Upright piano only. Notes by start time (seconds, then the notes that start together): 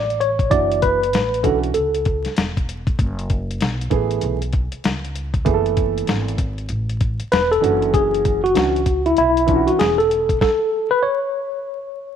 0.50 E3 D4 E4 F#4
1.43 E3 C#4 D4 F#4
3.90 E3 A3 B3 G#4
5.45 E3 A3 B3 G#4
5.54 A4
7.61 E3 C#4 D4 F#4
8.54 E3 C#4 D4 F#4
9.47 E3 C#4 D4 F4
9.55 F#4